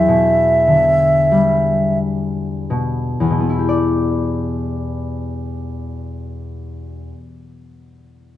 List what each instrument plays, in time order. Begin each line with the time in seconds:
Already playing: harp E2 D4 F#4, flute E5
0.08 harp B2
0.68 harp D3
1.32 harp G3
2.70 harp B2
3.20 harp E2
3.30 harp B2
3.40 harp B3
3.49 harp E4
3.59 harp G4
3.69 harp D5